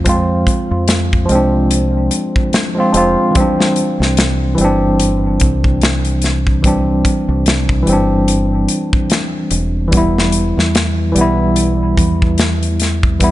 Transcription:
Already playing: fingered electric bass F2, tine electric piano C4 F4
0.04 tine electric piano F3 G#3 C4, kick, closed hi-hat
0.09 tine electric piano F4
0.47 kick, closed hi-hat
0.71 fingered electric bass F2
0.88 snare, closed hi-hat
1.13 kick
1.25 tine electric piano F3 G#3, closed hi-hat
1.30 fingered electric bass C2, tine electric piano C4
1.35 tine electric piano D4
1.71 closed hi-hat
2.11 closed hi-hat
2.36 kick
2.53 snare, closed hi-hat
2.75 tine electric piano F3 G#3 C4
2.80 tine electric piano F4
2.92 fingered electric bass F1, tine electric piano F3 G#3 C4, closed hi-hat
2.97 tine electric piano F4
3.31 tine electric piano E3 G3
3.35 tine electric piano C4, kick, closed hi-hat
3.40 tine electric piano D4
3.60 snare
3.76 closed hi-hat
4.00 fingered electric bass C2, snare
4.17 snare, closed hi-hat
4.55 tine electric piano E3 G3, closed hi-hat
4.59 fingered electric bass G1, tine electric piano C4
4.64 tine electric piano D4
5.00 closed hi-hat
5.40 fingered electric bass C2, kick, closed hi-hat
5.64 kick
5.81 snare, closed hi-hat
6.05 closed hi-hat
6.22 snare, closed hi-hat
6.47 kick
6.62 tine electric piano E3 G3 C4, kick, closed hi-hat
6.67 tine electric piano D4
7.05 kick, closed hi-hat
7.29 fingered electric bass C2
7.46 snare, closed hi-hat
7.69 kick
7.83 tine electric piano E3 G3
7.87 fingered electric bass G1, tine electric piano C4, closed hi-hat
7.93 tine electric piano D4
8.28 closed hi-hat
8.68 closed hi-hat
8.93 kick
9.10 snare, closed hi-hat
9.51 fingered electric bass E1, closed hi-hat
9.88 tine electric piano E3 G3
9.92 tine electric piano B3, kick, closed hi-hat
9.97 tine electric piano E4
10.18 snare
10.32 closed hi-hat
10.57 fingered electric bass E2, snare
10.75 snare, closed hi-hat
11.12 fingered electric bass B1, tine electric piano E3 G3
11.16 tine electric piano B3, closed hi-hat
11.21 tine electric piano E4
11.56 closed hi-hat
11.97 fingered electric bass E2, kick, closed hi-hat
12.22 kick
12.38 snare, closed hi-hat
12.63 closed hi-hat
12.80 snare, closed hi-hat
13.03 kick
13.19 tine electric piano E3 G3 B3, kick, closed hi-hat
13.24 tine electric piano E4

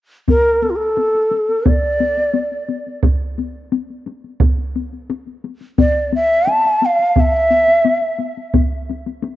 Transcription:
0.28 shakuhachi A#4, taiko, taiko high
0.45 taiko high
0.62 shakuhachi A4, taiko high
0.70 shakuhachi F4
0.76 shakuhachi A4
0.97 taiko high
1.15 taiko high
1.31 taiko high
1.49 taiko high
1.66 shakuhachi D5, taiko, taiko high
1.83 taiko high
2.00 taiko high
2.17 taiko high
2.34 taiko high
2.52 taiko high
2.69 taiko high
2.87 taiko high
3.03 taiko, taiko high
3.22 taiko high
3.38 taiko high
3.72 taiko high
3.90 taiko high
4.06 taiko high
4.24 taiko high
4.40 taiko, taiko high
4.58 taiko high
4.76 taiko high
4.93 taiko high
5.10 taiko high
5.27 taiko high
5.45 taiko high
5.61 taiko high
5.78 shakuhachi D5, taiko, taiko high
5.95 taiko high
6.13 shakuhachi E5, taiko high
6.47 shakuhachi A5, taiko high
6.65 taiko high
6.82 shakuhachi F5, taiko high
6.99 taiko high
7.16 taiko, taiko high
7.20 shakuhachi E5
7.34 taiko high
7.51 taiko high
7.67 taiko high
7.85 taiko high
8.02 taiko high
8.19 taiko high
8.37 taiko high
8.54 taiko, taiko high
8.72 taiko high
8.89 taiko high
9.06 taiko high
9.22 taiko high

